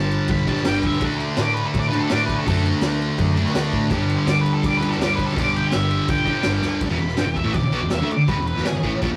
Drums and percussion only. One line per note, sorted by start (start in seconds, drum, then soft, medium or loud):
0.11 crash medium
0.28 kick loud
0.28 crash medium
0.47 kick medium
0.47 crash medium
0.56 snare soft
0.65 snare loud
0.65 crash loud
0.83 kick loud
0.83 crash medium
0.91 snare soft
1.01 kick loud
1.01 crash medium
1.20 crash medium
1.37 snare loud
1.37 crash medium
1.57 crash medium
1.74 kick loud
1.74 crash medium
1.93 crash medium
2.10 snare loud
2.10 crash medium
2.29 kick medium
2.29 crash medium
2.46 kick loud
2.46 crash loud
2.66 crash medium
2.82 snare loud
2.82 crash medium
3.02 crash medium
3.18 kick loud
3.18 crash medium
3.37 crash medium
3.45 snare soft
3.55 snare loud
3.55 crash medium
3.73 kick medium
3.73 crash medium
3.90 kick loud
3.90 crash medium
4.09 crash medium
4.27 snare loud
4.27 crash medium
4.46 crash medium
4.63 kick loud
4.63 crash loud
4.82 crash medium
4.91 snare soft
5.01 snare loud
5.01 crash loud
5.18 kick medium
5.18 crash medium
5.29 snare soft
5.37 kick loud
5.37 crash loud
5.56 crash medium
5.72 snare loud
5.72 crash medium
5.91 crash medium
6.08 kick loud
6.08 crash loud
6.27 kick medium
6.27 crash medium
6.43 snare loud
6.43 crash medium
6.62 snare medium
6.81 kick loud
6.81 crash loud
6.81 crash medium
6.99 crash medium
7.08 snare soft
7.17 snare loud
7.17 crash medium
7.36 kick medium
7.36 crash medium
7.54 kick loud
7.54 crash medium
7.72 crash medium
7.90 snare loud
7.90 crash medium
8.11 crash medium
8.28 kick loud
8.28 crash medium
8.47 crash medium
8.57 snare soft
8.65 snare loud
8.65 crash medium
8.83 kick medium
8.83 crash medium
9.02 kick loud
9.02 crash medium